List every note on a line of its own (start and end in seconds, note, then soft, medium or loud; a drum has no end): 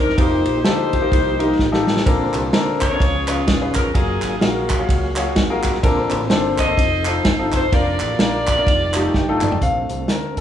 0.00 0.11 G1 medium
0.00 0.14 D#3 medium
0.00 0.14 C4 medium
0.00 0.11 D4 medium
0.00 0.10 D#4 medium
0.00 0.10 A#4 medium
0.00 0.16 A#4 loud
0.00 0.17 A#4 medium
0.00 0.11 C5 medium
0.00 0.14 D5 medium
0.09 snare soft
0.17 0.42 F1 loud
0.17 2.03 F3 medium
0.17 2.03 A#3 medium
0.17 0.55 D#4 medium
0.17 0.64 D#4 medium
0.17 2.03 D#4 medium
0.17 0.55 F4 medium
0.17 0.55 G4 medium
0.17 2.03 G4 medium
0.17 0.64 G4 medium
0.17 0.55 A#4 medium
0.17 0.64 C5 loud
0.17 kick loud
0.17 ride medium
0.45 0.62 A#1 medium
0.45 ride medium
0.65 1.05 D2 medium
0.65 0.95 D#4 medium
0.65 1.83 D#4 medium
0.65 0.95 F4 medium
0.65 0.95 G4 medium
0.65 1.83 G4 medium
0.65 0.95 A4 medium
0.65 1.83 C5 loud
0.65 snare loud
0.65 ride medium
0.93 kick medium
0.93 ride medium
1.02 1.29 D#4 medium
1.02 1.29 F4 medium
1.02 1.29 G4 medium
1.02 1.29 A#4 medium
1.12 1.52 C2 medium
1.12 kick loud
1.12 ride medium
1.39 1.62 D#4 medium
1.39 1.62 F4 medium
1.39 1.62 G4 medium
1.39 1.62 A#4 medium
1.39 ride medium
1.59 1.99 A1 medium
1.59 kick medium
1.59 snare medium
1.72 1.99 D#4 medium
1.72 1.99 F4 medium
1.72 1.99 G4 medium
1.72 1.99 A4 medium
1.72 snare medium
1.87 snare medium
1.97 snare loud
2.05 2.30 A#1 medium
2.05 2.77 A#2 medium
2.05 2.99 D3 medium
2.05 2.99 A#3 medium
2.05 2.43 C4 medium
2.05 2.99 C4 medium
2.05 2.44 D4 medium
2.05 2.43 A4 medium
2.05 2.44 A#4 medium
2.05 2.99 C5 medium
2.05 kick loud
2.05 ride medium
2.33 2.50 C2 loud
2.33 clap medium
2.33 ride medium
2.53 2.93 D2 medium
2.53 2.84 C4 medium
2.53 2.83 D4 medium
2.53 2.84 A4 medium
2.53 2.84 A#4 loud
2.53 snare loud
2.53 ride medium
2.81 3.72 F4 loud
2.81 3.72 G#4 loud
2.81 3.43 C#5 loud
2.81 kick medium
2.81 clap loud
2.81 ride medium
2.90 3.00 C4 medium
2.90 3.00 D4 medium
2.90 3.00 A4 medium
2.90 3.00 A#4 medium
3.00 3.40 C#2 loud
3.00 3.71 C#3 medium
3.00 3.93 F3 medium
3.00 3.93 B3 medium
3.00 3.93 C#4 medium
3.00 3.93 G#4 medium
3.00 kick loud
3.00 ride medium
3.28 3.51 C#4 medium
3.28 3.51 F4 medium
3.28 3.51 G#4 medium
3.28 3.51 B4 medium
3.28 clap loud
3.28 ride medium
3.47 3.88 D#1 loud
3.47 kick medium
3.47 snare loud
3.47 ride medium
3.61 3.87 C#4 medium
3.61 3.88 F4 medium
3.61 3.88 G#4 medium
3.61 3.88 B4 medium
3.74 3.93 A#4 loud
3.74 kick medium
3.74 clap loud
3.74 ride medium
3.94 4.18 F#1 medium
3.94 5.79 F#3 medium
3.94 4.32 F#3 medium
3.94 5.79 A#3 medium
3.94 4.41 C#4 medium
3.94 4.32 F4 medium
3.94 4.85 F4 medium
3.94 5.79 G#4 medium
3.94 4.42 G#4 loud
3.94 4.32 G#4 medium
3.94 4.32 A#4 medium
3.94 5.79 F5 medium
3.94 kick loud
3.94 ride medium
4.22 4.39 G#1 loud
4.22 clap medium
4.22 ride medium
4.41 4.82 A#1 loud
4.41 5.61 A#3 medium
4.41 5.60 C#4 medium
4.41 4.72 F4 medium
4.41 5.60 F#4 loud
4.41 4.72 F#4 medium
4.41 4.72 G#4 medium
4.41 4.72 A#4 medium
4.41 snare loud
4.41 ride medium
4.70 kick medium
4.70 clap loud
4.70 ride soft
4.79 5.06 F4 medium
4.79 5.06 F#4 medium
4.79 5.06 G#4 medium
4.79 5.06 C#5 medium
4.89 5.29 C#2 medium
4.89 kick loud
4.89 ride medium
5.16 5.40 F4 medium
5.16 5.40 F#4 medium
5.16 5.40 G#4 medium
5.16 5.39 C#5 medium
5.16 clap loud
5.16 ride medium
5.36 5.76 G#1 medium
5.36 kick medium
5.36 snare loud
5.36 ride medium
5.50 5.76 F4 medium
5.50 5.76 F#4 medium
5.50 5.76 G#4 medium
5.50 5.76 A#4 loud
5.63 kick medium
5.63 snare soft
5.63 clap loud
5.63 ride medium
5.74 snare soft
5.83 6.07 A#1 loud
5.83 6.54 A#2 medium
5.83 6.76 D3 medium
5.83 6.76 A#3 medium
5.83 6.21 C4 medium
5.83 6.76 C4 medium
5.83 6.21 D4 medium
5.83 6.21 A4 medium
5.83 6.21 A#4 loud
5.83 6.76 C5 loud
5.83 kick loud
5.83 ride medium
6.10 6.28 A1 loud
6.10 clap medium
6.10 ride medium
6.30 6.71 G1 loud
6.30 6.61 C4 medium
6.30 6.61 D4 medium
6.30 6.61 A4 medium
6.30 6.61 C5 medium
6.30 snare loud
6.30 ride medium
6.58 7.50 A4 medium
6.58 7.50 C5 medium
6.58 7.21 D#5 loud
6.58 kick medium
6.58 clap loud
6.58 ride soft
6.68 6.78 C4 medium
6.68 6.78 D4 medium
6.68 6.78 A4 medium
6.68 6.78 C5 medium
6.77 7.18 F1 medium
6.77 7.70 F3 medium
6.77 7.70 C4 medium
6.77 7.70 D#4 medium
6.77 6.84 G#4 medium
6.77 kick loud
6.77 ride medium
6.82 7.73 A4 medium
7.05 7.28 C4 medium
7.05 7.29 D#4 medium
7.05 7.29 F4 medium
7.05 7.29 A4 medium
7.05 clap loud
7.05 ride medium
7.25 7.65 G1 loud
7.25 kick medium
7.25 snare loud
7.25 ride medium
7.39 7.65 C4 medium
7.39 7.65 D#4 medium
7.39 7.65 F4 medium
7.39 7.65 A4 medium
7.52 7.72 C5 loud
7.52 kick medium
7.52 clap loud
7.52 ride medium
7.72 7.96 F1 loud
7.72 8.65 F3 medium
7.72 8.65 A#3 medium
7.72 8.10 A#3 medium
7.72 7.79 C#4 medium
7.72 8.10 D4 medium
7.72 8.10 F4 medium
7.72 8.19 F4 medium
7.72 8.65 A#4 medium
7.72 8.10 A#4 medium
7.72 8.19 A#4 medium
7.72 8.19 D5 loud
7.72 kick loud
7.72 ride medium
7.78 8.68 D4 medium
8.00 8.16 A1 medium
8.00 clap medium
8.00 ride medium
8.19 8.60 A#1 loud
8.19 8.50 A#3 medium
8.19 8.50 D4 medium
8.19 8.50 F4 medium
8.19 9.39 F4 medium
8.19 9.38 A#4 medium
8.19 8.50 A#4 medium
8.19 9.39 D5 loud
8.19 snare loud
8.19 ride medium
8.47 kick medium
8.47 clap loud
8.47 ride medium
8.58 8.67 A#3 medium
8.58 8.67 D4 medium
8.58 8.67 F4 medium
8.58 8.67 A#4 medium
8.67 9.07 F1 medium
8.67 9.60 F3 medium
8.67 9.60 G3 medium
8.67 9.60 D#4 medium
8.67 9.60 G4 medium
8.67 kick loud
8.67 ride medium
8.94 9.18 A3 medium
8.94 9.18 D#4 medium
8.94 9.18 F4 medium
8.94 9.18 G4 medium
8.94 9.13 A5 medium
8.94 clap loud
8.94 ride medium
9.14 9.54 G1 medium
9.14 9.40 G5 medium
9.14 kick medium
9.14 snare medium
9.29 9.55 A3 medium
9.29 9.55 D#4 medium
9.29 9.55 F4 medium
9.29 9.55 A4 medium
9.41 9.61 D5 medium
9.41 clap loud
9.41 mid tom medium
9.52 floor tom loud
9.61 9.85 A#1 medium
9.61 9.68 C3 soft
9.61 10.41 D3 medium
9.61 10.41 A3 medium
9.61 10.41 A3 soft
9.61 10.41 C4 medium
9.61 10.41 A4 medium
9.61 10.11 F5 loud
9.61 kick medium
9.61 closed hi-hat medium
9.67 10.41 D3 medium
9.89 10.06 C2 medium
9.89 closed hi-hat medium
10.08 10.41 D2 medium
10.08 10.38 A#4 medium
10.08 snare loud
10.08 closed hi-hat medium
10.37 kick medium
10.37 closed hi-hat medium